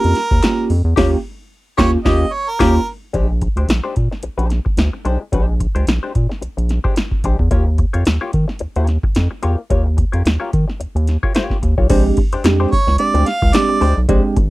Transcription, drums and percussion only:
0.04 closed hi-hat medium
0.15 snare soft
0.15 closed hi-hat medium
0.31 kick medium
0.43 snare medium
0.43 clap medium
0.43 closed hi-hat medium
0.70 open hi-hat medium
0.97 kick loud
0.97 snare loud
0.97 crash medium
1.79 kick loud
1.79 snare loud
2.05 kick loud
2.05 snare medium
2.60 kick loud
2.60 snare loud
2.60 crash medium
3.14 kick medium
3.14 closed hi-hat medium
3.41 kick medium
3.41 closed hi-hat medium
3.57 closed hi-hat medium
3.69 snare loud
3.69 closed hi-hat medium
3.96 kick medium
3.96 closed hi-hat medium
4.12 snare soft
4.23 closed hi-hat medium
4.39 closed hi-hat medium
4.50 snare soft
4.50 closed hi-hat medium
4.66 kick medium
4.77 snare medium
4.77 closed hi-hat medium
5.05 closed hi-hat medium
5.33 kick loud
5.33 closed hi-hat medium
5.60 kick medium
5.60 closed hi-hat medium
5.76 closed hi-hat medium
5.87 snare loud
5.87 closed hi-hat medium
6.15 kick medium
6.15 closed hi-hat medium
6.31 snare soft
6.42 closed hi-hat medium
6.58 closed hi-hat medium
6.69 snare soft
6.69 closed hi-hat medium
6.85 kick medium
6.96 snare medium
6.96 closed hi-hat medium
7.11 kick medium
7.24 kick medium
7.24 closed hi-hat medium
7.39 kick medium
7.51 kick loud
7.51 closed hi-hat medium
7.78 kick medium
7.78 closed hi-hat medium
7.94 closed hi-hat medium
8.05 snare loud
8.05 closed hi-hat medium
8.33 kick medium
8.33 closed hi-hat medium
8.49 snare soft
8.59 closed hi-hat medium
8.76 closed hi-hat medium
8.87 snare soft
8.87 closed hi-hat medium
9.03 kick medium
9.15 snare medium
9.15 closed hi-hat medium
9.43 closed hi-hat medium
9.70 kick loud
9.70 closed hi-hat medium
9.98 kick medium
9.98 closed hi-hat medium
10.13 closed hi-hat medium
10.26 snare loud
10.26 closed hi-hat medium
10.53 kick medium
10.53 closed hi-hat medium
10.70 snare soft
10.81 closed hi-hat medium
10.97 closed hi-hat medium
11.07 snare soft
11.07 closed hi-hat medium
11.23 kick medium
11.35 snare medium
11.35 closed hi-hat medium
11.50 kick medium
11.50 snare soft
11.63 kick medium
11.63 closed hi-hat medium
11.78 kick medium
11.90 kick loud
11.90 closed hi-hat medium
11.90 crash loud
12.17 kick medium
12.17 closed hi-hat medium
12.33 closed hi-hat medium
12.44 snare loud
12.44 clap medium
12.44 closed hi-hat medium
12.72 kick loud
12.72 open hi-hat medium
12.88 snare soft
12.98 closed hi-hat loud
13.15 closed hi-hat medium
13.26 snare soft
13.26 closed hi-hat medium
13.42 kick loud
13.53 snare medium
13.53 clap medium
13.53 closed hi-hat medium
13.81 open hi-hat medium
14.09 kick loud
14.09 closed hi-hat medium
14.36 kick loud
14.36 closed hi-hat medium

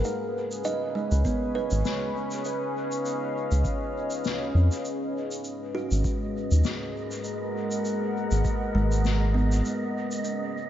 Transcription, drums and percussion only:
0.04 shaker medium
0.52 shaker medium
0.65 shaker medium
1.12 shaker medium
1.25 kick loud
1.25 shaker medium
1.71 shaker medium
1.85 snare medium
1.85 shaker medium
2.31 shaker medium
2.45 shaker medium
2.92 shaker medium
3.06 shaker medium
3.52 shaker medium
3.65 kick loud
3.65 shaker medium
4.11 shaker medium
4.25 snare medium
4.25 shaker medium
4.72 shaker medium
4.85 shaker medium
5.32 shaker medium
5.44 shaker medium
5.91 shaker medium
6.04 kick loud
6.04 shaker medium
6.52 shaker medium
6.64 snare loud
6.64 shaker medium
7.11 shaker medium
7.24 shaker medium
7.71 shaker medium
7.85 shaker medium
8.32 shaker medium
8.45 kick loud
8.45 shaker medium
8.92 shaker medium
9.05 snare medium
9.05 shaker medium
9.52 shaker medium
9.65 shaker medium
10.12 shaker medium
10.24 shaker medium

